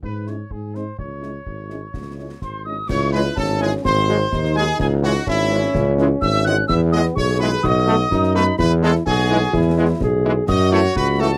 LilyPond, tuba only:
\new Staff \with { instrumentName = "Tuba" } { \clef bass \time 2/4 \key cis \minor \tempo 4 = 126 gis,4 gis,4 | cis,4 gis,,4 | cis,4 gis,,4 | cis,4 gis,,4 |
gis,,4 dis,4 | cis,4 gis,,4 | cis,4 gis,,4 | e,4 b,,4 |
b,,4 fis,4 | e,4 b,,4 | e,4 b,,4 | fis,4 cis,4 | }